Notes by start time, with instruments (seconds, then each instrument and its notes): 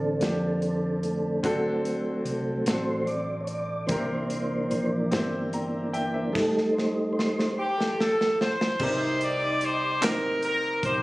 Already playing: fingered electric bass A1, grand piano D3 A#3 D4 F4 A4, tonewheel organ D3 C4 D4 A4
0.20 fingered electric bass F2, grand piano A#3 D4 F4 G4, snare, closed hi-hat
0.62 closed hi-hat
1.03 tonewheel organ D3 A3 C4, closed hi-hat
1.43 fingered electric bass D2, grand piano D3 C4 D4 F#4 A4, tonewheel organ F#3 A3 C4, kick, closed hi-hat
1.85 closed hi-hat
2.25 fingered electric bass C2, closed hi-hat
2.66 fingered electric bass A1, tonewheel organ F#3 A3 C4 C5, grand piano C4 D4 F#4 A4, snare, closed hi-hat
3.07 tonewheel organ D5, closed hi-hat
3.41 tonewheel organ C#5
3.47 tonewheel organ D5, closed hi-hat
3.87 fingered electric bass C2, grand piano C3 C4 E4 G4, tonewheel organ E3 A#3 D4 C5, kick, closed hi-hat
3.91 grand piano A#4
4.07 tonewheel organ C5
4.30 closed hi-hat
4.71 fingered electric bass A#1, closed hi-hat
5.11 fingered electric bass G1, grand piano C4 E4 G4 C5, snare, closed hi-hat
5.53 grand piano G5 A#5, closed hi-hat
5.93 grand piano E5 G5, closed hi-hat
6.14 grand piano C5 E5
6.32 tonewheel organ G3 A3 D#4 A4, kick, crash
6.37 snare
6.58 snare
6.73 tonewheel organ C5
6.78 snare
7.13 tonewheel organ C5
7.19 snare
7.39 snare
7.56 horn section G4, tonewheel organ C5
7.77 tonewheel organ A4, snare
8.00 horn section A4, snare
8.21 snare
8.41 horn section C5, snare
8.61 snare
8.79 fingered electric bass C2, grand piano C3 C4 D4 G4 A#4 C5, horn section D#4 G4 C5, kick, crash
8.87 grand piano D#4
9.21 horn section D5, closed hi-hat
9.61 horn section C5, closed hi-hat
10.01 grand piano C4 D#4 G4 A#4 C5, horn section A#4, snare, clap, closed hi-hat
10.43 horn section A#4, closed hi-hat
10.83 fingered electric bass B1, horn section D#4 G4 C5, kick, closed hi-hat